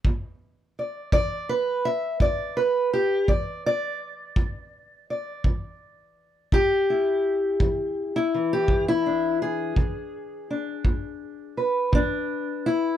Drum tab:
BD |o--o--o--o--|o--o--o--o--|o--o--o--o--|